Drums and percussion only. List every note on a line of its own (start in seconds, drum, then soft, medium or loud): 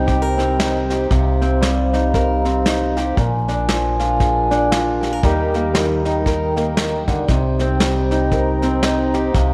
0.08 kick medium
0.08 snare soft
0.39 snare soft
0.60 snare medium
0.90 snare soft
1.11 kick medium
1.11 snare soft
1.42 snare soft
1.62 snare medium
1.94 snare soft
2.14 kick medium
2.14 snare soft
2.45 snare soft
2.66 snare medium
2.97 snare soft
3.17 kick medium
3.17 snare soft
3.48 snare soft
3.69 snare medium
4.00 snare soft
4.20 kick medium
4.20 snare soft
4.51 snare soft
4.72 snare medium
5.03 snare soft
5.23 kick medium
5.23 snare soft
5.54 snare soft
5.75 snare medium
6.05 snare soft
6.26 kick medium
6.26 snare soft
6.57 snare soft
6.77 snare medium
7.08 kick medium
7.08 snare soft
7.28 kick medium
7.28 snare soft
7.59 snare soft
7.80 snare medium
8.11 snare soft
8.32 kick medium
8.32 snare soft
8.62 snare soft
8.83 snare medium
9.14 snare soft
9.34 kick medium
9.34 snare soft